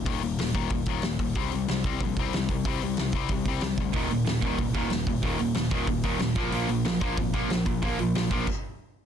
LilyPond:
<<
  \new Staff \with { instrumentName = "Distorted electric guitar" } { \clef bass \time 4/4 \key ees \major \tempo 4 = 185 <ees, bes, ees>8 <ees, bes,>8 <ees, bes,>8 <ees, bes, ees>8 <ees, bes,>8 <ees, bes, ees>8 <ees, bes,>8 <ees, bes,>8 | <c g c'>8 <c g>8 <c g>8 <c g c'>8 <c g>8 <c g c'>8 <c g>8 <c g>8 | <c g c'>8 <c g>8 <c g>8 <c g c'>8 <c g>8 <c g c'>8 <c g>8 <c g>8 | <ees, bes, ees>8 <ees, bes,>8 <ees, bes,>8 <ees, bes, ees>8 <ees, bes,>8 <ees, bes, ees>8 <ees, bes,>8 <ees, bes,>8 |
<ees, bes, ees>8 <ees, bes,>8 <ees, bes,>8 <ees, bes, ees>8 <ees, bes,>8 <ees, bes, ees>8 <ees, bes,>8 <bes, f bes>8 | <bes, f bes>8 <bes, f>8 <bes, f>8 <bes, f bes>8 <bes, f>8 <bes, f bes>8 <bes, f>8 <bes, f>8 | <bes, f bes>8 <bes, f>8 <bes, f>8 <bes, f bes>8 r2 | }
  \new Staff \with { instrumentName = "Distorted electric guitar" } { \clef bass \time 4/4 \key ees \major r1 | r1 | r1 | <ees, bes, ees>8 <ees, bes,>8 <ees, bes,>8 <ees, bes, ees>8 <ees, bes,>8 <ees, bes, ees>8 <ees, bes,>8 <ees, bes,>8 |
<ees, bes, ees>8 <ees, bes,>8 <ees, bes,>8 <ees, bes, ees>8 <ees, bes,>8 <ees, bes, ees>8 <ees, bes,>8 <bes, f bes>8 | <bes, f bes>8 <bes, f>8 <bes, f>8 <bes, f bes>8 <bes, f>8 <bes, f bes>8 <bes, f>8 <bes, f>8 | <bes, f bes>8 <bes, f>8 <bes, f>8 <bes, f bes>8 r2 | }
  \new Staff \with { instrumentName = "Picked electric bass" } { \clef bass \time 4/4 \key ees \major ees,,8 ees,,8 ees,,8 ees,,8 ees,,8 ees,,8 ees,,8 ees,,8 | c,8 c,8 c,8 c,8 bes,,8 c,8 c,8 c,8 | c,8 c,8 c,8 c,8 c,8 c,8 c,8 d,8 | ees,,8 ees,,8 ees,,8 ees,,8 c,8 ees,,8 ees,,8 ees,,8 |
ees,,8 ees,,8 ees,,8 ees,,8 ees,,8 ees,,8 ees,,8 bes,,8 | bes,,8 bes,,8 bes,,8 bes,,8 aes,,8 bes,,8 bes,,8 bes,,8 | bes,,8 bes,,8 bes,,8 bes,,8 r2 | }
  \new DrumStaff \with { instrumentName = "Drums" } \drummode { \time 4/4 <hho bd>8 hho8 <hho sn>8 <hho bd>8 <hho bd>8 <hho bd>8 <hho sn>8 <hho bd>8 | <hho bd>8 hho8 <hho sn>8 <hho bd>8 <hho bd>8 <hho bd>8 <hho sn>8 <hho bd>8 | <hho bd>8 hho8 <hho sn>8 <hho bd>8 <hho bd>8 <hho bd>8 <hho sn>8 <hho bd>8 | <hho bd>8 hho8 <hho sn>8 <hho bd>8 <hho bd>8 <hho bd>8 <hho sn>8 <hho bd>8 |
<hho bd>8 hho8 <hho sn>8 <hho bd>8 <hho bd>8 <hho bd>8 <hho sn>8 <hho bd>8 | hho8 hho8 <hho sn>8 <hho bd>8 <hho bd>8 <hho bd>8 <hho sn>8 <hho bd>8 | <hho bd>8 hho8 <hho sn>8 <hho bd>8 <cymc bd>4 r4 | }
>>